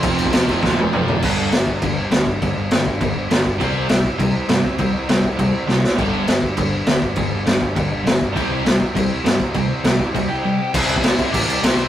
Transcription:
<<
  \new Staff \with { instrumentName = "Lead electric guitar" } { \time 4/4 \key c \major \tempo 4 = 202 <c' c''>2. r4 | r1 | r1 | r1 |
r1 | r1 | r1 | r1 |
r2 r8 <g' g''>4. | <e' e''>2 <d' d''>4 <c' c''>4 | }
  \new Staff \with { instrumentName = "Distorted electric guitar" } { \clef bass \time 4/4 \key c \major <f, c f>4 <f, c f>4 <f, c f>4 <f, c f>4 | <g, d g>4 <g, d g>4 <g, d g>4 <g, d g>4 | <g, d g>4 <g, d g>4 <g, d g>4 <g, d g>4 | <c g c'>4 <c g c'>4 <c g c'>4 <c g c'>4 |
<c g c'>4 <c g c'>4 <c g c'>4 <c g c'>4 | <g, d g>4 <g, d g>4 <g, d g>4 <g, d g>4 | <g, d g>4 <g, d g>4 <g, d g>4 <g, d g>4 | <c g c'>4 <c g c'>4 <c g c'>4 <c g c'>4 |
<c g c'>4 <c g c'>4 <c g c'>4 <c g c'>4 | <c g c'>4 <c g c'>4 <c g c'>4 <c g c'>4 | }
  \new Staff \with { instrumentName = "Distorted electric guitar" } { \clef bass \time 4/4 \key c \major <f, c f>4. <f, c f>4. <f, c f>4 | <g, d g>4 <g, d>8 r8 <g, d>8 r8 <g, d>8 r8 | <g, d>8 r8 <g, d>8 r8 <g, d>8 r8 <g, d>8 r8 | <c g c'>4 <c g>8 r8 <c g>8 r8 <c g>8 r8 |
<c g>8 r8 <c g>8 r8 <c g>8 r8 <c g>8 r8 | <g, d g>4 <g, d>8 r8 <g, d>8 r8 <g, d>8 r8 | <g, d>8 r8 <g, d>8 r8 <g, d>8 r8 <g, d>8 r8 | <c g c'>4 <c g>8 r8 <c g>8 r8 <c g>8 r8 |
<c g>8 r8 <c g>8 r8 <c g>8 r8 <c g>8 r8 | <c g c'>4. <c g c'>4. <c g c'>4 | }
  \new Staff \with { instrumentName = "Overdriven electric guitar" } { \clef bass \time 4/4 \key c \major <f, c f>4. <f, c f>4. <f, c f>4 | <g, d g>4 <g, d>8 r8 <g, d>8 r8 <g, d>8 r8 | <g, d>8 r8 <g, d>8 r8 <g, d>8 r8 <g, d>8 r8 | <c g c'>4 <c g>8 r8 <c g>8 r8 <c g>8 r8 |
<c g>8 r8 <c g>8 r8 <c g>8 r8 <c g>8 r8 | <g, d g>4 <g, d>8 r8 <g, d>8 r8 <g, d>8 r8 | <g, d>8 r8 <g, d>8 r8 <g, d>8 r8 <g, d>8 r8 | <c g c'>4 <c g>8 r8 <c g>8 r8 <c g>8 r8 |
<c g>8 r8 <c g>8 r8 <c g>8 r8 <c g>8 r8 | r1 | }
  \new Staff \with { instrumentName = "Picked electric bass" } { \clef bass \time 4/4 \key c \major f,,8 f,,8 f,,8 f,,8 d,8 f,,8 f,,8 a,,8 | g,,8 g,,8 g,,4 g,,4 d,8 g,,8 | g,,8 g,,8 g,,8 g,,8 g,,8 g,,8 g,,8 g,,8 | c,8 c,8 c,4 c,4 g,8 c,8 |
c,8 c,8 c,8 c,8 c,8 c,8 c,8 c,8 | g,,8 g,,8 g,,4 g,,4 d,8 g,,8 | g,,8 g,,8 g,,8 g,,8 g,,8 g,,8 g,,8 g,,8 | c,8 c,8 c,4 c,4 g,8 c,8 |
c,8 c,8 c,8 c,8 c,8 c,8 r4 | c,8 c,8 c,8 c,8 a,,8 c,8 c,8 c,8 | }
  \new DrumStaff \with { instrumentName = "Drums" } \drummode { \time 4/4 <cymc bd>8 cymc16 bd16 <cymc sn>8 <cymc bd>8 <bd sn>8 tommh8 toml8 tomfh8 | <cymc bd>4 <cymc sn>8 bd8 <cymc bd>4 <cymc sn>8 bd8 | <cymc bd>4 <cymc sn>8 bd8 <cymc bd>4 <cymc sn>8 bd8 | <cymc bd>4 <cymc sn>8 bd8 <cymc bd>4 <cymc sn>8 bd8 |
<cymc bd>4 <cymc sn>8 bd8 <cymc bd>4 sn8 sn8 | <cymc bd>4 <cymc sn>8 bd8 <cymc bd>4 <cymc sn>8 bd8 | <cymc bd>4 <cymc sn>8 bd8 <cymc bd>4 <cymc sn>8 bd8 | <cymc bd>4 <cymc sn>8 bd8 <cymc bd>4 <cymc sn>8 bd8 |
<cymc bd>4 <cymc sn>8 bd8 <cymc bd>4 r4 | <cymc bd>8 cymc16 bd16 <cymc sn>8 <cymc bd>8 <cymc bd>8 cymc8 <cymc sn>8 cymc8 | }
>>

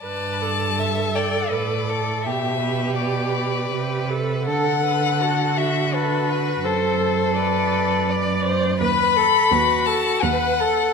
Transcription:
<<
  \new Staff \with { instrumentName = "Violin" } { \time 3/4 \key g \major \tempo 4 = 82 a''4. g''8 d''4 | e''4 d''4. r8 | fis''4. e''8 b'4 | c''4 b'4. r8 |
b''4. a''8 fis''4 | }
  \new Staff \with { instrumentName = "Violin" } { \time 3/4 \key g \major d''4 e''8 d''8 b'8 a'8 | g'8 b'2~ b'8 | a'8 b'8 a'8 fis'8 a'8 b'8 | a'8 a'4. d''8 c''8 |
b'8 a'8 fis'4 b'8 a'8 | }
  \new Staff \with { instrumentName = "Viola" } { \time 3/4 \key g \major b'8 a'2~ a'8 | g'2 g'8 a'8 | a'4 fis'4 fis'4 | a'4 d''4 d''4 |
b'8 a'8 b'8 a'8 b'8 a'8 | }
  \new Staff \with { instrumentName = "Cello" } { \clef bass \time 3/4 \key g \major g,2 a,4 | b,2 c4 | d2. | fis,2. |
dis,4 dis,4 dis,4 | }
>>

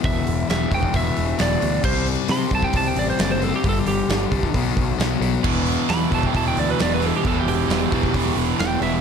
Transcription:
<<
  \new Staff \with { instrumentName = "Lead electric guitar" } { \time 4/4 \key e \minor \tempo 4 = 133 e''4 e''8 g''8 e''4 d''4 | c''8 r8 c'''8 a''16 g''16 a''16 g''16 d''16 c''16 d''16 c''16 a'16 g'16 | a'16 g'16 g'4. r2 | r4 b''8 a''16 g''16 a''16 g''16 d''16 b'16 d''16 b'16 a'16 g'16 |
a'16 g'16 g'2 r8 g''8 e''8 | }
  \new Staff \with { instrumentName = "Overdriven electric guitar" } { \clef bass \time 4/4 \key e \minor <e, b, e>4 <e, b, e>8 <e, b, e>8 <e, b, e>4 <e, b, e>8 <e, b, e>8 | <c g c'>4 <c g c'>8 <c g c'>8 <c g c'>4 <c g c'>8 <c g c'>8 | <g, d g>4 <g, d g>8 <g, d g>8 <b, fis b>4 <b, fis b>8 <b, fis b>8 | <e, b, e>4 <e, b, e>8 <e, b, e>8 <e, b, e>4 <e, b, e>8 <e, b, e>8 |
<e, b, e>4 <e, b, e>8 <e, b, e>8 <e, b, e>4 <e, b, e>8 <e, b, e>8 | }
  \new Staff \with { instrumentName = "Overdriven electric guitar" } { \clef bass \time 4/4 \key e \minor r1 | r1 | r1 | <e, b, e>4 <e, b, e>8 <e, b, e>8 <e, b, e>4 <e, b, e>8 <e, b, e>8 |
<e, b, e>4 <e, b, e>8 <e, b, e>8 <e, b, e>4 <e, b, e>8 <e, b, e>8 | }
  \new Staff \with { instrumentName = "Picked electric bass" } { \clef bass \time 4/4 \key e \minor e,,8 e,,8 e,,8 e,,8 e,,8 e,,8 e,,8 d,8 | c,4 c8 c,8 c,8 a,,8 fis,,4 | g,,8 g,,8 g,,8 c,8 b,,8 b,,8 b,,8 b,,8 | e,,4 e,8 e,,8 e,,8 d,8 e,,4 |
e,,8 e,,8 e,,8 e,,8 e,,8 e,,8 e,,8 e,,8 | }
  \new DrumStaff \with { instrumentName = "Drums" } \drummode { \time 4/4 <hho bd>8 hho8 <hho sn>8 <hho bd>16 bd16 <hho bd>8 hho8 <hho sn>16 sn16 hho8 | <cymc bd>8 hho8 <hho sn>8 <hho bd>16 bd16 <hho bd>8 hho8 <hho sn>8 hho8 | <hho bd>8 hho8 <hho sn>8 <hho bd>16 <bd sn>16 <hho bd>8 <hho bd>8 <hho sn>8 hho8 | <cymc bd>8 hho8 <hho sn>8 <hho bd>16 bd16 <hho bd>8 hho8 <hho sn>8 hho8 |
<hho bd>8 hho8 <hho sn>8 <hho bd>16 <bd sn>16 <hho bd>8 hho8 <hho sn>8 hho8 | }
>>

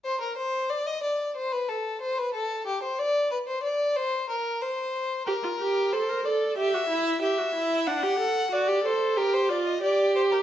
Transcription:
<<
  \new Staff \with { instrumentName = "Violin" } { \time 4/4 \key g \phrygian \tempo 4 = 92 c''16 bes'16 c''8 d''16 ees''16 d''8 c''16 b'16 a'8 c''16 b'16 a'8 | g'16 c''16 d''8 b'16 c''16 d''8 c''8 bes'8 c''4 | bes'4 c''8 d''8 e''4 e''4 | fis''4 d''8 c''8 bes'16 c''16 d''16 ees''16 d''8 c''16 bes'16 | }
  \new Staff \with { instrumentName = "Viola" } { \time 4/4 \key g \phrygian r1 | r1 | g'16 f'16 g'8 a'16 bes'16 a'8 g'16 fis'16 e'8 g'16 fis'16 e'8 | d'16 g'16 a'8 fis'16 g'16 a'8 g'8 f'8 g'4 | }
>>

